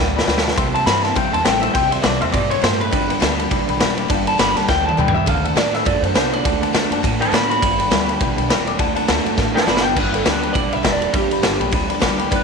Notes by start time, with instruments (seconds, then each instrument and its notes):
Already playing: clean electric guitar G2 D3 G4, steel-string acoustic guitar A2
0.00 upright bass D2
0.15 upright piano D5 G5 B5, snare
0.27 upright bass D2, clean electric guitar G2 E3, steel-string acoustic guitar B2, upright piano D5 G5 B5, snare
0.38 snare
0.43 upright piano D5 G5 B5
0.48 snare
0.56 upright bass C2, steel-string acoustic guitar C3, clean electric guitar C3 G3, upright piano E5 G5 C6, kick, ride
0.73 upright piano E5 G5 C6, clean electric guitar A5, ride
0.86 upright bass G2, clean electric guitar C3 G3 B5, steel-string acoustic guitar E3 G3 C4 E4, upright piano E5 G5 C6, snare, ride
1.03 steel-string acoustic guitar C4 E4, upright piano E5 G5 C6, clean electric guitar A5, snare, ride
1.15 upright bass E2, steel-string acoustic guitar G2, clean electric guitar C3 G3 G5, upright piano E5 G5 C6, kick, ride
1.32 upright bass E2, upright piano E5 G5 C6, clean electric guitar A5, ride
1.45 upright bass A1, clean electric guitar C3 A3 G5, steel-string acoustic guitar E3 G3 C4 E4, upright piano E5 G5 C6, snare, ride
1.62 steel-string acoustic guitar C4 E4, clean electric guitar E5, upright piano E5 G5 C6, ride
1.73 upright bass C2, clean electric guitar C3 G3 G5, steel-string acoustic guitar C3, upright piano E5 G5 C6, kick, ride
1.91 clean electric guitar E5, upright piano E5 G5 C6, ride
2.02 upright bass C2, clean electric guitar C3 G3 D5, steel-string acoustic guitar E3 G3 C4 E4, upright piano E5 G5 C6, snare, ride
2.19 upright bass E2, steel-string acoustic guitar C4 E4, upright piano E5 G5 C6, clean electric guitar E5, ride
2.32 upright bass G2, steel-string acoustic guitar B2, clean electric guitar C3 G3 D5, upright piano E5 G5 C6, kick, ride
2.49 clean electric guitar C#5, upright piano E5 G5 C6, ride
2.61 upright bass G2, steel-string acoustic guitar A2, clean electric guitar C3 A3 C5, upright piano E5 G5 C6, snare, ride
2.79 clean electric guitar B4, upright piano E5 G5 C6, ride
2.91 upright bass G1, steel-string acoustic guitar G2, clean electric guitar G2 D3, upright piano D5 G5 B5, kick, ride
3.09 upright piano D5 G5 B5, ride
3.20 upright bass D2, clean electric guitar G2 D3, steel-string acoustic guitar D3 G3 B3 G4, upright piano D5 G5 B5, snare, ride
3.37 steel-string acoustic guitar B3 G4, upright piano D5 G5 B5, ride
3.51 upright bass B1, clean electric guitar G2 D3, steel-string acoustic guitar D3, upright piano D5 G5 B5, kick, ride
3.68 upright bass B1, upright piano D5 G5 B5, ride
3.79 upright bass E1, clean electric guitar G2 E3, steel-string acoustic guitar D3 G3 B3 G4, upright piano D5 G5 B5, snare, ride
3.97 upright piano D5 G5 B5, ride
4.08 upright bass G1, steel-string acoustic guitar G2, clean electric guitar G2 D3, upright piano D5 G5 A5, kick, ride
4.26 upright piano D5 G5 B5, clean electric guitar A5, ride
4.38 upright bass G1, clean electric guitar G2 D3 B5, steel-string acoustic guitar D3 G3 B3 G4, upright piano D5 G5 D6, snare, ride
4.55 upright bass B1, steel-string acoustic guitar B3 G4, upright piano D5 G5 B5, clean electric guitar A5, snare, ride
4.67 upright bass D2, clean electric guitar G2 D3 G5, steel-string acoustic guitar D3, upright piano D5, kick, snare
4.86 upright piano D5 G5 B5, clean electric guitar A5, high tom
4.97 upright bass D2, clean electric guitar G2 E3 G5, steel-string acoustic guitar D3 G3 B3 G4, upright piano D5 G5 B5, mid tom
5.08 mid tom
5.14 steel-string acoustic guitar B3 G4, upright piano D5 G5 B5, clean electric guitar E5
5.26 upright bass D2, steel-string acoustic guitar D3, clean electric guitar D3 A3 F5, upright piano D5 F#5 A5, kick, ride
5.43 upright piano D5 F#5 A5, clean electric guitar E5, ride
5.55 upright bass A2, steel-string acoustic guitar D3 A3 D4 F#4, clean electric guitar D3 A3 D5, upright piano D5 F#5 A5, snare, ride
5.74 upright piano D5 F#5 B5, clean electric guitar E5, snare, ride
5.85 upright bass F#2, steel-string acoustic guitar A2, clean electric guitar D3 A3 D5, upright piano D5 F#5 A5, kick, ride
6.02 upright bass F#2, clean electric guitar C5, upright piano D5 F#5 A5, ride
6.14 upright bass C2, steel-string acoustic guitar D3 A3 D4 F#4, clean electric guitar D3 B3 C5, upright piano D5 F#5 A5, snare, ride
6.32 steel-string acoustic guitar D4 F#4, upright piano D5 F#5 A5, clean electric guitar D5, ride
6.44 upright bass D2, steel-string acoustic guitar D3, clean electric guitar D3 A3, upright piano D5 F#5 A5, kick, ride
6.61 upright piano D5 F#5 A5, ride
6.73 upright bass D2, steel-string acoustic guitar D3 A3 D4 F#4, clean electric guitar D3 A3, upright piano D5 F#5 A5, snare, ride
6.91 upright bass F#2, steel-string acoustic guitar D4 F#4, upright piano D5 F#5 A5, ride
7.03 steel-string acoustic guitar A2, upright bass A2, clean electric guitar D3 A3, upright piano D5 F#5 A5, kick, ride
7.20 clean electric guitar C5 A5, upright piano D5 F#5 B5, ride
7.32 upright bass A2, steel-string acoustic guitar D3 A3 D4 F#4, clean electric guitar D3 B3 D5 B5, upright piano D5 F#5 A5, snare, ride
7.49 steel-string acoustic guitar D4 F#4, upright piano D5 F#5 A5, clean electric guitar B5, ride
7.61 upright bass G1, clean electric guitar G2 D3, steel-string acoustic guitar G2, upright piano D5 G5 B5, kick, ride
7.79 upright piano D5 G5 B5, ride
7.90 upright bass D2, clean electric guitar G2 D3, steel-string acoustic guitar D3 G3 B3 G4, upright piano D5 G5 B5, snare, ride
8.07 steel-string acoustic guitar B3 G4, upright piano D5 G5 B5, ride
8.20 upright bass B1, clean electric guitar G2 D3, steel-string acoustic guitar B2, upright piano D5 G5 B5, kick, ride
8.36 upright bass B1, upright piano D5 G5 B5, ride
8.49 upright bass E1, clean electric guitar G2 E3, steel-string acoustic guitar C3, upright piano D5 G5 B5, snare, ride
8.66 upright piano D5 G5 D6, ride
8.78 upright bass D2, steel-string acoustic guitar D3, clean electric guitar D3 A3, upright piano D5 F#5 A5, kick, ride
8.95 upright piano D5 F#5 A5, ride
9.08 upright bass D2, steel-string acoustic guitar D3 A3 D4 F#4, clean electric guitar D3 A3, upright piano D5 F#5 A5, snare, ride
9.25 upright bass F#2, steel-string acoustic guitar D4 F#4, upright piano D5 F#5 A5, ride
9.36 upright bass A2, steel-string acoustic guitar A2, clean electric guitar D3 A3, upright piano D5 F#5 A5, kick, snare
9.53 clean electric guitar C5 A5, upright piano D5 F#5 A5
9.57 snare
9.66 upright bass F#1, steel-string acoustic guitar D3 A3 D4 F#4, clean electric guitar D3 B3 D5 B5, upright piano D5 F#5 B5, snare
9.77 snare
9.82 upright piano D5 F#5 A5, clean electric guitar G5
9.95 upright bass G1, clean electric guitar G2 D3 B4, steel-string acoustic guitar G2, upright piano D5 G5 B5, kick, crash
10.12 clean electric guitar A4, upright piano D5 G5 B5, ride
10.25 upright bass D2, clean electric guitar G2 D3 B4, steel-string acoustic guitar D3 G3 B3 G4, upright piano D5 G5 B5, snare, ride
10.41 steel-string acoustic guitar B3 G4, clean electric guitar B4, upright piano D5 G5 B5, ride
10.53 upright bass B1, clean electric guitar G2 D3 D5, steel-string acoustic guitar D3, upright piano D5 G5 B5, kick, ride
10.72 upright bass B1, upright piano D5 G5 B5, clean electric guitar E5, ride
10.83 upright bass E1, clean electric guitar G2 E3, steel-string acoustic guitar D3 G3 B3 G4, upright piano D5 G5 B5, kick, snare, ride
10.93 clean electric guitar D5
11.01 steel-string acoustic guitar B3 G4, upright piano D5 G5 B5, ride
11.13 upright bass G1, steel-string acoustic guitar G2, clean electric guitar G2 D3 G4, upright piano D5 G5 B5, kick, ride
11.31 upright piano D5 G5 B5, ride
11.42 upright bass G1, clean electric guitar G2 D3, steel-string acoustic guitar D3 G3 B3 G4, upright piano G5, snare, ride
11.59 upright bass B1, steel-string acoustic guitar B3 G4, upright piano D5 G5 B5, ride
11.71 upright bass D2, clean electric guitar G2 D3, steel-string acoustic guitar D3, upright piano D5 G5 B5, kick, ride
11.89 upright piano D5 G5 B5, ride
11.99 upright bass D2, clean electric guitar G2 E3, steel-string acoustic guitar D3 G3 B3 G4, upright piano D5 G5 B5, kick, snare, ride
12.18 steel-string acoustic guitar B3 G4, upright piano D5 G5 B5, ride
12.30 upright bass G1, steel-string acoustic guitar G2, clean electric guitar G2 D3 B4, upright piano D5 G5 B5, kick, ride